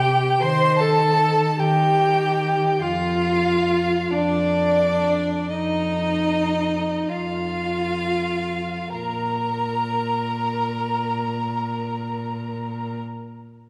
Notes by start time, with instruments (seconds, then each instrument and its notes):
Already playing: cello C3, violin G4 G5, viola G4
0.40 cello D#3, violin C5 C6, viola C5
0.79 violin A4 A5, viola A4
1.59 cello D#3, violin G4 G5, viola G4
2.81 cello F2, violin F4 F5, viola F4
4.11 cello F2, viola D4, violin D4 D5
5.50 cello F2, viola D#4, violin D#4 D#5
7.08 cello F2, viola F4, violin F4 F5
8.94 cello A#2, viola A#4, violin A#4 A#5